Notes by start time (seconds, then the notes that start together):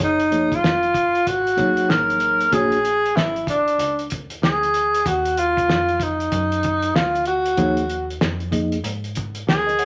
Already playing: G#4 C#5
0.00 F#1 D#4, kick, closed hi-hat
0.20 closed hi-hat
0.31 F3 A#3 D#4 G#4 C#5, closed hi-hat
0.52 F4, kick, closed hi-hat
0.62 F1, snare
0.83 closed hi-hat
0.94 kick, closed hi-hat
1.15 closed hi-hat
1.27 G#1 F#4, kick, closed hi-hat
1.47 closed hi-hat
1.57 F#3 A#3 D#4 G#4 C#5, kick, closed hi-hat
1.77 A1, closed hi-hat
1.89 A1 A#4, snare
2.10 closed hi-hat
2.20 closed hi-hat
2.41 closed hi-hat
2.52 A#1 A#3 D4 F#4 G#4 C#5, kick, closed hi-hat
2.72 closed hi-hat
2.85 closed hi-hat
3.06 closed hi-hat
3.16 G#1 E4, snare
3.36 closed hi-hat
3.47 D4, kick, closed hi-hat
3.68 closed hi-hat
3.79 C#2, closed hi-hat
3.99 closed hi-hat
4.10 kick, closed hi-hat
4.30 D2, closed hi-hat
4.42 D2 G#4, snare
4.63 closed hi-hat
4.74 closed hi-hat
4.94 closed hi-hat
5.06 D#2 F#4, kick, closed hi-hat
5.25 closed hi-hat
5.37 F4, closed hi-hat
5.57 kick, closed hi-hat
5.68 F2, snare
5.89 closed hi-hat
6.00 D#4, kick, closed hi-hat
6.20 closed hi-hat
6.32 F#2, kick, closed hi-hat
6.52 closed hi-hat
6.63 kick, closed hi-hat
6.82 closed hi-hat
6.95 D2 F4, snare
7.15 closed hi-hat
7.25 F#4, closed hi-hat
7.46 closed hi-hat
7.57 D#2 F3 A#3 D#4 G#4 C#5, kick, closed hi-hat
7.77 closed hi-hat
7.90 closed hi-hat
8.10 closed hi-hat
8.21 F2, snare
8.40 closed hi-hat
8.51 F3 A#3 D#4 G#4 D#5, kick, closed hi-hat
8.72 closed hi-hat
8.84 G#2, closed hi-hat
9.04 closed hi-hat
9.15 kick, closed hi-hat
9.35 closed hi-hat
9.47 D2 G#4, snare
9.67 A#4 D#5, closed hi-hat
9.79 C#5 F#5, closed hi-hat